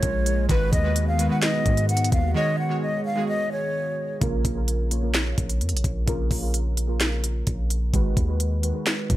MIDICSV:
0, 0, Header, 1, 6, 480
1, 0, Start_track
1, 0, Tempo, 465116
1, 510, Time_signature, 4, 2, 24, 8
1, 9461, End_track
2, 0, Start_track
2, 0, Title_t, "Flute"
2, 0, Program_c, 0, 73
2, 0, Note_on_c, 0, 73, 84
2, 469, Note_off_c, 0, 73, 0
2, 511, Note_on_c, 0, 71, 102
2, 730, Note_off_c, 0, 71, 0
2, 751, Note_on_c, 0, 75, 84
2, 1089, Note_off_c, 0, 75, 0
2, 1111, Note_on_c, 0, 77, 76
2, 1330, Note_off_c, 0, 77, 0
2, 1350, Note_on_c, 0, 78, 76
2, 1460, Note_off_c, 0, 78, 0
2, 1470, Note_on_c, 0, 75, 87
2, 1921, Note_off_c, 0, 75, 0
2, 1950, Note_on_c, 0, 78, 91
2, 2169, Note_off_c, 0, 78, 0
2, 2191, Note_on_c, 0, 77, 80
2, 2410, Note_off_c, 0, 77, 0
2, 2430, Note_on_c, 0, 75, 105
2, 2650, Note_off_c, 0, 75, 0
2, 2671, Note_on_c, 0, 78, 81
2, 2890, Note_off_c, 0, 78, 0
2, 2910, Note_on_c, 0, 75, 83
2, 3129, Note_off_c, 0, 75, 0
2, 3150, Note_on_c, 0, 77, 98
2, 3369, Note_off_c, 0, 77, 0
2, 3390, Note_on_c, 0, 75, 90
2, 3609, Note_off_c, 0, 75, 0
2, 3632, Note_on_c, 0, 73, 82
2, 4310, Note_off_c, 0, 73, 0
2, 9461, End_track
3, 0, Start_track
3, 0, Title_t, "Synth keys"
3, 0, Program_c, 1, 88
3, 0, Control_c, 1, 64, 127
3, 0, Note_on_c, 1, 49, 75
3, 0, Note_on_c, 1, 58, 65
3, 0, Note_on_c, 1, 65, 78
3, 0, Note_on_c, 1, 70, 85
3, 194, Note_off_c, 1, 49, 0
3, 199, Note_off_c, 1, 58, 0
3, 203, Note_off_c, 1, 65, 0
3, 207, Note_off_c, 1, 70, 0
3, 503, Note_on_c, 1, 51, 101
3, 511, Note_on_c, 1, 56, 92
3, 520, Note_on_c, 1, 66, 92
3, 523, Control_c, 1, 64, 0
3, 529, Note_on_c, 1, 71, 113
3, 694, Control_c, 1, 64, 127
3, 796, Note_off_c, 1, 51, 0
3, 801, Note_off_c, 1, 56, 0
3, 805, Note_off_c, 1, 66, 0
3, 809, Note_off_c, 1, 71, 0
3, 861, Note_on_c, 1, 51, 76
3, 869, Note_on_c, 1, 56, 74
3, 878, Note_on_c, 1, 66, 69
3, 886, Note_on_c, 1, 71, 86
3, 1155, Note_off_c, 1, 51, 0
3, 1160, Note_off_c, 1, 56, 0
3, 1164, Note_off_c, 1, 66, 0
3, 1168, Note_off_c, 1, 71, 0
3, 1218, Note_on_c, 1, 51, 76
3, 1227, Note_on_c, 1, 56, 66
3, 1236, Note_on_c, 1, 66, 69
3, 1244, Note_on_c, 1, 71, 84
3, 1321, Note_off_c, 1, 51, 0
3, 1325, Note_off_c, 1, 56, 0
3, 1330, Note_off_c, 1, 66, 0
3, 1334, Note_off_c, 1, 71, 0
3, 1335, Note_on_c, 1, 51, 80
3, 1343, Note_on_c, 1, 56, 68
3, 1352, Note_on_c, 1, 66, 66
3, 1360, Note_on_c, 1, 71, 85
3, 2116, Note_off_c, 1, 51, 0
3, 2120, Note_off_c, 1, 56, 0
3, 2124, Note_off_c, 1, 66, 0
3, 2128, Note_off_c, 1, 71, 0
3, 2420, Note_on_c, 1, 51, 104
3, 2429, Note_on_c, 1, 56, 94
3, 2437, Note_on_c, 1, 66, 92
3, 2446, Note_on_c, 1, 73, 114
3, 2715, Note_off_c, 1, 51, 0
3, 2720, Note_off_c, 1, 56, 0
3, 2724, Note_off_c, 1, 66, 0
3, 2728, Note_off_c, 1, 73, 0
3, 2775, Note_on_c, 1, 51, 80
3, 2784, Note_on_c, 1, 56, 69
3, 2792, Note_on_c, 1, 66, 73
3, 2801, Note_on_c, 1, 73, 86
3, 3169, Note_off_c, 1, 51, 0
3, 3174, Note_off_c, 1, 56, 0
3, 3178, Note_off_c, 1, 66, 0
3, 3182, Note_off_c, 1, 73, 0
3, 3258, Note_on_c, 1, 51, 78
3, 3266, Note_on_c, 1, 56, 73
3, 3275, Note_on_c, 1, 66, 77
3, 3284, Note_on_c, 1, 68, 85
3, 4037, Note_off_c, 1, 51, 0
3, 4042, Note_off_c, 1, 56, 0
3, 4046, Note_off_c, 1, 66, 0
3, 4050, Note_off_c, 1, 68, 0
3, 4341, Note_on_c, 1, 49, 102
3, 4350, Note_on_c, 1, 58, 90
3, 4358, Note_on_c, 1, 65, 86
3, 4362, Control_c, 1, 64, 0
3, 4367, Note_on_c, 1, 70, 110
3, 4515, Control_c, 1, 64, 127
3, 4636, Note_off_c, 1, 49, 0
3, 4640, Note_off_c, 1, 58, 0
3, 4644, Note_off_c, 1, 65, 0
3, 4649, Note_off_c, 1, 70, 0
3, 4697, Note_on_c, 1, 49, 80
3, 4705, Note_on_c, 1, 58, 65
3, 4713, Note_on_c, 1, 65, 73
3, 4722, Note_on_c, 1, 70, 90
3, 4993, Note_off_c, 1, 49, 0
3, 4997, Note_off_c, 1, 58, 0
3, 5002, Note_off_c, 1, 65, 0
3, 5006, Note_off_c, 1, 70, 0
3, 5060, Note_on_c, 1, 49, 65
3, 5069, Note_on_c, 1, 58, 65
3, 5077, Note_on_c, 1, 65, 63
3, 5086, Note_on_c, 1, 73, 78
3, 5162, Note_off_c, 1, 49, 0
3, 5166, Note_off_c, 1, 58, 0
3, 5170, Note_off_c, 1, 65, 0
3, 5175, Note_off_c, 1, 73, 0
3, 5177, Note_on_c, 1, 49, 78
3, 5185, Note_on_c, 1, 58, 74
3, 5194, Note_on_c, 1, 65, 66
3, 5202, Note_on_c, 1, 70, 77
3, 5957, Note_off_c, 1, 49, 0
3, 5961, Note_off_c, 1, 58, 0
3, 5965, Note_off_c, 1, 65, 0
3, 5970, Note_off_c, 1, 70, 0
3, 6258, Note_on_c, 1, 49, 106
3, 6267, Note_on_c, 1, 58, 96
3, 6276, Note_on_c, 1, 65, 92
3, 6284, Note_on_c, 1, 70, 102
3, 6554, Note_off_c, 1, 49, 0
3, 6559, Note_off_c, 1, 58, 0
3, 6563, Note_off_c, 1, 65, 0
3, 6567, Note_off_c, 1, 70, 0
3, 6614, Note_on_c, 1, 49, 78
3, 6623, Note_on_c, 1, 58, 76
3, 6632, Note_on_c, 1, 65, 77
3, 6640, Note_on_c, 1, 70, 90
3, 7009, Note_off_c, 1, 49, 0
3, 7013, Note_off_c, 1, 58, 0
3, 7017, Note_off_c, 1, 65, 0
3, 7022, Note_off_c, 1, 70, 0
3, 7092, Note_on_c, 1, 49, 71
3, 7101, Note_on_c, 1, 58, 65
3, 7110, Note_on_c, 1, 65, 77
3, 7118, Note_on_c, 1, 70, 82
3, 7874, Note_off_c, 1, 49, 0
3, 7879, Note_off_c, 1, 58, 0
3, 7883, Note_off_c, 1, 65, 0
3, 7887, Note_off_c, 1, 70, 0
3, 8182, Note_on_c, 1, 51, 100
3, 8191, Note_on_c, 1, 56, 89
3, 8200, Note_on_c, 1, 66, 90
3, 8205, Control_c, 1, 64, 0
3, 8208, Note_on_c, 1, 71, 108
3, 8377, Control_c, 1, 64, 127
3, 8476, Note_off_c, 1, 51, 0
3, 8481, Note_off_c, 1, 56, 0
3, 8485, Note_off_c, 1, 66, 0
3, 8489, Note_off_c, 1, 71, 0
3, 8540, Note_on_c, 1, 51, 71
3, 8549, Note_on_c, 1, 56, 71
3, 8557, Note_on_c, 1, 66, 69
3, 8566, Note_on_c, 1, 71, 85
3, 8835, Note_off_c, 1, 51, 0
3, 8839, Note_off_c, 1, 56, 0
3, 8844, Note_off_c, 1, 66, 0
3, 8848, Note_off_c, 1, 71, 0
3, 8898, Note_on_c, 1, 51, 72
3, 8906, Note_on_c, 1, 56, 63
3, 8914, Note_on_c, 1, 66, 66
3, 8923, Note_on_c, 1, 71, 75
3, 9001, Note_off_c, 1, 51, 0
3, 9005, Note_off_c, 1, 56, 0
3, 9009, Note_off_c, 1, 66, 0
3, 9013, Note_off_c, 1, 71, 0
3, 9014, Note_on_c, 1, 51, 78
3, 9023, Note_on_c, 1, 56, 65
3, 9031, Note_on_c, 1, 66, 66
3, 9040, Note_on_c, 1, 71, 83
3, 9461, Note_off_c, 1, 51, 0
3, 9461, Note_off_c, 1, 56, 0
3, 9461, Note_off_c, 1, 66, 0
3, 9461, Note_off_c, 1, 71, 0
3, 9461, End_track
4, 0, Start_track
4, 0, Title_t, "Analog synth pad"
4, 0, Program_c, 2, 89
4, 0, Note_on_c, 2, 49, 82
4, 0, Note_on_c, 2, 53, 77
4, 0, Note_on_c, 2, 56, 77
4, 0, Note_on_c, 2, 65, 93
4, 471, Note_off_c, 2, 49, 0
4, 472, Note_off_c, 2, 53, 0
4, 472, Note_off_c, 2, 65, 0
4, 511, Note_on_c, 2, 51, 87
4, 511, Note_on_c, 2, 66, 93
4, 512, Note_on_c, 2, 59, 78
4, 2412, Note_off_c, 2, 66, 0
4, 2431, Note_on_c, 2, 68, 93
4, 4309, Note_off_c, 2, 56, 0
4, 4312, Note_off_c, 2, 51, 0
4, 4313, Note_off_c, 2, 59, 0
4, 4331, Note_off_c, 2, 68, 0
4, 9461, End_track
5, 0, Start_track
5, 0, Title_t, "808-style bass"
5, 0, Program_c, 3, 38
5, 31, Note_on_c, 3, 34, 104
5, 491, Note_off_c, 3, 34, 0
5, 510, Note_on_c, 3, 32, 117
5, 741, Note_off_c, 3, 32, 0
5, 750, Note_on_c, 3, 39, 104
5, 1326, Note_off_c, 3, 39, 0
5, 1711, Note_on_c, 3, 44, 105
5, 2171, Note_off_c, 3, 44, 0
5, 2190, Note_on_c, 3, 39, 105
5, 2420, Note_off_c, 3, 39, 0
5, 4350, Note_on_c, 3, 34, 114
5, 4581, Note_off_c, 3, 34, 0
5, 4590, Note_on_c, 3, 34, 99
5, 5512, Note_off_c, 3, 34, 0
5, 5551, Note_on_c, 3, 34, 109
5, 5790, Note_on_c, 3, 41, 94
5, 5806, Note_off_c, 3, 34, 0
5, 5910, Note_on_c, 3, 34, 100
5, 5926, Note_off_c, 3, 41, 0
5, 6024, Note_off_c, 3, 34, 0
5, 6030, Note_on_c, 3, 34, 101
5, 6260, Note_off_c, 3, 34, 0
5, 6270, Note_on_c, 3, 34, 115
5, 6501, Note_off_c, 3, 34, 0
5, 6510, Note_on_c, 3, 34, 100
5, 7669, Note_off_c, 3, 34, 0
5, 7711, Note_on_c, 3, 34, 101
5, 8171, Note_off_c, 3, 34, 0
5, 8190, Note_on_c, 3, 32, 113
5, 8420, Note_off_c, 3, 32, 0
5, 8429, Note_on_c, 3, 39, 104
5, 9006, Note_off_c, 3, 39, 0
5, 9390, Note_on_c, 3, 44, 104
5, 9461, Note_off_c, 3, 44, 0
5, 9461, End_track
6, 0, Start_track
6, 0, Title_t, "Drums"
6, 27, Note_on_c, 9, 42, 85
6, 31, Note_on_c, 9, 36, 89
6, 130, Note_off_c, 9, 42, 0
6, 134, Note_off_c, 9, 36, 0
6, 270, Note_on_c, 9, 42, 77
6, 373, Note_off_c, 9, 42, 0
6, 510, Note_on_c, 9, 36, 115
6, 510, Note_on_c, 9, 42, 90
6, 613, Note_off_c, 9, 42, 0
6, 614, Note_off_c, 9, 36, 0
6, 750, Note_on_c, 9, 36, 91
6, 750, Note_on_c, 9, 42, 82
6, 853, Note_off_c, 9, 36, 0
6, 854, Note_off_c, 9, 42, 0
6, 989, Note_on_c, 9, 42, 84
6, 1092, Note_off_c, 9, 42, 0
6, 1229, Note_on_c, 9, 42, 72
6, 1332, Note_off_c, 9, 42, 0
6, 1468, Note_on_c, 9, 39, 90
6, 1468, Note_on_c, 9, 42, 69
6, 1470, Note_on_c, 9, 38, 111
6, 1571, Note_off_c, 9, 39, 0
6, 1571, Note_off_c, 9, 42, 0
6, 1573, Note_off_c, 9, 38, 0
6, 1710, Note_on_c, 9, 42, 70
6, 1711, Note_on_c, 9, 36, 106
6, 1813, Note_off_c, 9, 42, 0
6, 1814, Note_off_c, 9, 36, 0
6, 1830, Note_on_c, 9, 42, 70
6, 1933, Note_off_c, 9, 42, 0
6, 1950, Note_on_c, 9, 42, 55
6, 2030, Note_off_c, 9, 42, 0
6, 2030, Note_on_c, 9, 42, 74
6, 2110, Note_off_c, 9, 42, 0
6, 2110, Note_on_c, 9, 42, 94
6, 2190, Note_on_c, 9, 36, 105
6, 2191, Note_off_c, 9, 42, 0
6, 2191, Note_on_c, 9, 42, 78
6, 2293, Note_off_c, 9, 36, 0
6, 2294, Note_off_c, 9, 42, 0
6, 4350, Note_on_c, 9, 36, 113
6, 4350, Note_on_c, 9, 42, 86
6, 4453, Note_off_c, 9, 36, 0
6, 4453, Note_off_c, 9, 42, 0
6, 4590, Note_on_c, 9, 36, 89
6, 4590, Note_on_c, 9, 42, 82
6, 4693, Note_off_c, 9, 36, 0
6, 4693, Note_off_c, 9, 42, 0
6, 4829, Note_on_c, 9, 42, 80
6, 4932, Note_off_c, 9, 42, 0
6, 5069, Note_on_c, 9, 42, 71
6, 5172, Note_off_c, 9, 42, 0
6, 5308, Note_on_c, 9, 39, 88
6, 5308, Note_on_c, 9, 42, 64
6, 5309, Note_on_c, 9, 38, 112
6, 5411, Note_off_c, 9, 39, 0
6, 5411, Note_off_c, 9, 42, 0
6, 5413, Note_off_c, 9, 38, 0
6, 5550, Note_on_c, 9, 42, 71
6, 5551, Note_on_c, 9, 36, 104
6, 5653, Note_off_c, 9, 42, 0
6, 5654, Note_off_c, 9, 36, 0
6, 5670, Note_on_c, 9, 42, 69
6, 5774, Note_off_c, 9, 42, 0
6, 5790, Note_on_c, 9, 42, 53
6, 5871, Note_off_c, 9, 42, 0
6, 5871, Note_on_c, 9, 42, 72
6, 5950, Note_off_c, 9, 42, 0
6, 5950, Note_on_c, 9, 42, 87
6, 6030, Note_on_c, 9, 36, 101
6, 6031, Note_off_c, 9, 42, 0
6, 6031, Note_on_c, 9, 42, 76
6, 6133, Note_off_c, 9, 36, 0
6, 6134, Note_off_c, 9, 42, 0
6, 6270, Note_on_c, 9, 36, 113
6, 6270, Note_on_c, 9, 42, 86
6, 6373, Note_off_c, 9, 36, 0
6, 6373, Note_off_c, 9, 42, 0
6, 6510, Note_on_c, 9, 36, 88
6, 6511, Note_on_c, 9, 46, 80
6, 6613, Note_off_c, 9, 36, 0
6, 6614, Note_off_c, 9, 46, 0
6, 6749, Note_on_c, 9, 42, 83
6, 6852, Note_off_c, 9, 42, 0
6, 6990, Note_on_c, 9, 42, 76
6, 7093, Note_off_c, 9, 42, 0
6, 7228, Note_on_c, 9, 39, 89
6, 7228, Note_on_c, 9, 42, 64
6, 7230, Note_on_c, 9, 38, 109
6, 7331, Note_off_c, 9, 39, 0
6, 7331, Note_off_c, 9, 42, 0
6, 7333, Note_off_c, 9, 38, 0
6, 7469, Note_on_c, 9, 42, 83
6, 7572, Note_off_c, 9, 42, 0
6, 7707, Note_on_c, 9, 42, 87
6, 7711, Note_on_c, 9, 36, 87
6, 7810, Note_off_c, 9, 42, 0
6, 7814, Note_off_c, 9, 36, 0
6, 7951, Note_on_c, 9, 42, 75
6, 8054, Note_off_c, 9, 42, 0
6, 8190, Note_on_c, 9, 36, 112
6, 8190, Note_on_c, 9, 42, 86
6, 8293, Note_off_c, 9, 36, 0
6, 8293, Note_off_c, 9, 42, 0
6, 8429, Note_on_c, 9, 36, 90
6, 8430, Note_on_c, 9, 42, 78
6, 8533, Note_off_c, 9, 36, 0
6, 8534, Note_off_c, 9, 42, 0
6, 8669, Note_on_c, 9, 42, 81
6, 8772, Note_off_c, 9, 42, 0
6, 8909, Note_on_c, 9, 42, 68
6, 9012, Note_off_c, 9, 42, 0
6, 9148, Note_on_c, 9, 39, 90
6, 9148, Note_on_c, 9, 42, 64
6, 9149, Note_on_c, 9, 38, 108
6, 9251, Note_off_c, 9, 39, 0
6, 9251, Note_off_c, 9, 42, 0
6, 9253, Note_off_c, 9, 38, 0
6, 9390, Note_on_c, 9, 36, 104
6, 9390, Note_on_c, 9, 42, 70
6, 9461, Note_off_c, 9, 36, 0
6, 9461, Note_off_c, 9, 42, 0
6, 9461, End_track
0, 0, End_of_file